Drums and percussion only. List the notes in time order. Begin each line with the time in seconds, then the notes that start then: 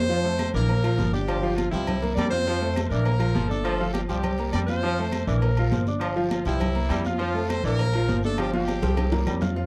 0.09 cowbell, long guiro
0.25 high conga
0.39 cowbell, high conga, low agogo, short guiro
0.55 short guiro
0.69 cowbell, high conga, low agogo, long guiro
0.84 high conga, low agogo
0.98 cowbell, high conga, short guiro
1.13 high conga, short guiro
1.28 cowbell, high conga, low agogo, long guiro
1.44 high conga
1.58 cowbell, high conga, low agogo, short guiro
1.73 cowbell, high conga, short guiro
1.87 cowbell, high conga, low conga, low agogo, long guiro
2.03 cowbell, high conga, low conga
2.17 cowbell, high conga, low timbale, low agogo, short guiro
2.31 cowbell, high conga, short guiro
2.47 cowbell, long guiro
2.62 high conga
2.76 cowbell, high conga, low agogo, short guiro
2.91 short guiro
3.05 cowbell, high conga, low agogo, long guiro
3.20 high conga, low agogo
3.35 cowbell, high conga, low timbale, short guiro
3.51 high conga, short guiro
3.65 cowbell, high conga, low agogo, long guiro
3.80 high conga
3.94 cowbell, high conga, low agogo, short guiro
4.09 cowbell, high conga, short guiro
4.23 cowbell, high conga, low conga, low agogo, long guiro
4.38 cowbell, high conga
4.53 cowbell, high conga, low agogo, short guiro
4.68 cowbell, high conga, short guiro
4.83 cowbell, high conga, long guiro
4.98 high conga
5.12 cowbell, high conga, low agogo, short guiro
5.28 short guiro
5.42 cowbell, high conga, low agogo, long guiro
5.57 high conga, low agogo
5.72 cowbell, high conga, low timbale, short guiro
5.87 high conga, short guiro
6.01 cowbell, high conga, low agogo, long guiro
6.16 high conga
6.31 cowbell, high conga, low agogo, short guiro
6.45 cowbell, high conga, short guiro
6.60 cowbell, high conga, low conga, low agogo, long guiro
6.75 cowbell, high conga
6.90 cowbell, high conga, low timbale, low agogo, short guiro
7.05 cowbell, high conga, short guiro
7.19 cowbell, high conga, long guiro
7.36 high conga
7.49 cowbell, high conga, low agogo, short guiro
7.64 short guiro
7.79 cowbell, high conga, low agogo, long guiro
7.93 high conga, low agogo
8.09 cowbell, high conga, low timbale, short guiro
8.23 high conga, short guiro
8.38 cowbell, high conga, low agogo, long guiro
8.54 high conga
8.67 cowbell, high conga, low agogo, short guiro
8.82 cowbell, high bongo, low conga, short guiro
8.97 cowbell, high bongo, low conga, low agogo, long guiro
9.12 cowbell, low bongo, low conga, high timbale
9.27 cowbell, low bongo, low agogo, short guiro
9.41 cowbell, low bongo, low conga, low timbale, short guiro
9.56 cowbell, high conga